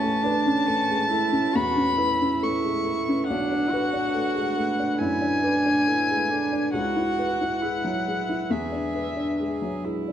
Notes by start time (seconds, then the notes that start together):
Already playing: A1 A3 C#4 B4 C#5 A5
0.04 A3
0.23 D4 B4
0.46 C#4
0.66 A3 C#4
0.90 G#3
1.10 A3 E4
1.32 C#4
1.54 E2 F#4 B5
1.77 C#4
1.97 E4 B4
2.21 C#4
2.43 A3 C#6
2.64 G#3
2.85 A3
3.08 C#4
3.27 B1 A3 D4 B4 F#5
3.52 D4
3.70 F#4 B4
3.93 D4
4.15 A3
4.35 G#3
4.57 A3
4.79 D4
4.98 F#2 E4 G#5
5.22 D4
5.44 D4 B4
5.66 D4
5.87 A3 E4
6.10 G#3
6.30 A3 D4
6.52 D4
6.72 C#2 G#3 E4 F#4 F#5
6.96 E4
7.19 B4
7.41 E4
7.61 G#3 E4
7.84 F#3
8.08 G#3
8.29 E4
8.50 E2 D4 G#4 B4 E5
8.72 D4
8.95 B4
9.16 D4
9.40 G#3 G#4
9.62 F#3
9.85 G#3 E4
10.08 D4